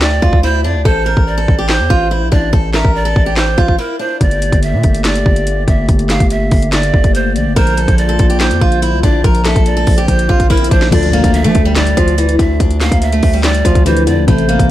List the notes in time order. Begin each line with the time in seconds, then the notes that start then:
Already playing: D2 G4, downlifter
0.01 D5, snare, clap
0.22 D2 F4, kick
0.33 kick
0.43 E4 C5
0.64 F2 D4 D5
0.75 D2
0.85 A1 A4 C5, kick
1.06 A#4
1.17 A1, kick
1.27 D5
1.38 A4
1.48 A1, kick
1.58 G4
1.69 C5, snare, clap
1.80 E2
1.90 A1 F4, kick
2.11 E4
2.22 A#1
2.32 A1 D4 D5, kick
2.53 A1 A4, kick
2.74 A#4 E5, snare, clap
2.85 A1, kick
2.95 D5
3.05 A4
3.16 A1, kick
3.26 G4
3.37 C5, snare, clap
3.58 A1 F4, kick
3.68 kick
3.78 E4 A#4
3.99 D4 C5
4.21 G1 D3 A3 A#3 G4 D5, kick, closed hi-hat
4.31 closed hi-hat
4.42 closed hi-hat
4.52 G1, kick, closed hi-hat
4.63 E5, closed hi-hat
4.73 A#2
4.83 G1, kick, closed hi-hat
4.94 closed hi-hat
5.05 D5, snare, clap, closed hi-hat
5.15 closed hi-hat
5.26 G1, kick
5.36 closed hi-hat
5.47 closed hi-hat
5.68 G1 E5, kick, closed hi-hat
5.89 G1, kick, closed hi-hat
5.99 closed hi-hat
6.09 F5, snare, clap, closed hi-hat
6.20 G1, kick, closed hi-hat
6.30 E5, closed hi-hat
6.51 G1, kick, open hi-hat
6.62 closed hi-hat
6.73 D5, snare, clap, closed hi-hat
6.83 closed hi-hat
6.94 G1, kick
7.04 kick, closed hi-hat
7.15 C5, closed hi-hat
7.35 A#1 D5, closed hi-hat
7.46 G1
7.56 A#1 F3 F4 A#4 C5, kick, closed hi-hat
7.67 closed hi-hat
7.77 A4, closed hi-hat
7.88 A#1, kick, closed hi-hat
7.98 D5, closed hi-hat
8.09 A4
8.19 A#1, kick, closed hi-hat
8.30 G4, closed hi-hat
8.40 C5, snare, clap, closed hi-hat
8.51 F2, closed hi-hat
8.61 A#1 F4, kick
8.72 closed hi-hat
8.82 E4, closed hi-hat
8.93 C2
9.03 A#1 D4 D5, kick, closed hi-hat
9.24 A#1 A#4, kick, closed hi-hat, swell
9.35 closed hi-hat
9.45 A4 E5, snare, clap, closed hi-hat
9.56 A#1, kick, closed hi-hat
9.66 D5, closed hi-hat
9.77 A4
9.87 A#1, kick, open hi-hat
9.98 G4, closed hi-hat
10.08 A#1 C5, kick, closed hi-hat
10.19 closed hi-hat
10.29 A#1 F4, kick
10.40 kick, closed hi-hat
10.50 E4 A#4, kick, closed hi-hat
10.57 closed hi-hat
10.64 closed hi-hat
10.71 A#1 D4 C5, kick, closed hi-hat
10.82 snare
10.90 D2 D3 F3 D4 F4 A4 D5, kick, closed hi-hat, crash, impact
11.03 closed hi-hat
11.13 A#3, closed hi-hat
11.24 D2, kick, closed hi-hat
11.34 E5, closed hi-hat
11.44 F3 A3, closed hi-hat
11.55 D2, kick, closed hi-hat
11.65 G3
11.76 D5, snare, clap, closed hi-hat
11.87 closed hi-hat
11.97 D2 F3, kick, closed hi-hat
12.08 closed hi-hat
12.18 E3, closed hi-hat
12.29 closed hi-hat
12.39 D2 D3 E5, kick, closed hi-hat
12.60 D2 D4, kick, closed hi-hat
12.71 closed hi-hat
12.81 A#3 F5, snare, clap, closed hi-hat
12.92 D2, kick, closed hi-hat
13.02 E5, closed hi-hat
13.12 A3, closed hi-hat
13.23 D2, kick, open hi-hat
13.34 G3
13.44 D5, snare, clap, closed hi-hat
13.54 closed hi-hat
13.65 D2 F3, kick, closed hi-hat
13.75 kick, closed hi-hat
13.85 D3 E3 F3 A3 G4 C5, closed hi-hat
13.97 closed hi-hat
14.07 F2 D3 D5, closed hi-hat
14.17 D2
14.27 A1 C3 E3 A3 E4 A4 C5, kick, closed hi-hat
14.38 closed hi-hat
14.49 A#3, closed hi-hat
14.59 A1, kick, closed hi-hat